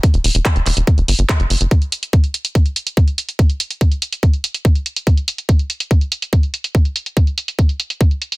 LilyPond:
<<
  \new Staff \with { instrumentName = "Analog synth bass" } { \clef bass \time 4/4 \key e \minor \tempo 4 = 143 r16 e,,16 e,,16 e,,16 r16 e,,16 e,,16 e,,16 r16 e,,16 g,,16 g,,16 r16 fis,,16 fis,,16 fis,,16 | r1 | r1 | r1 |
r1 | }
  \new DrumStaff \with { instrumentName = "Drums" } \drummode { \time 4/4 <hh bd>16 hh16 hho16 hh16 <hc hh bd>16 hh16 <hc hho>16 hh16 <hh bd>16 hh16 hho16 hh16 <hc hh bd>16 hh16 hho16 hh16 | <hh bd>16 hh16 hh16 hh16 <hh bd>16 hh16 hh16 hh16 <hh bd>16 hh16 hh16 hh16 <hh bd>16 hh16 hh16 hh16 | <hh bd>16 hh16 hh16 hh16 <hh bd>16 hh16 hh16 hh16 <hh bd>16 hh16 hh16 hh16 <hh bd>16 hh16 hh16 hh16 | <hh bd>16 hh16 hh16 hh16 <hh bd>16 hh16 hh16 hh16 <hh bd>16 hh16 hh16 hh16 <hh bd>16 hh16 hh16 hh16 |
<hh bd>16 hh16 hh16 hh16 <hh bd>16 hh16 hh16 hh16 <hh bd>16 hh16 hh16 hh16 <hh bd>16 hh16 hh16 hh16 | }
>>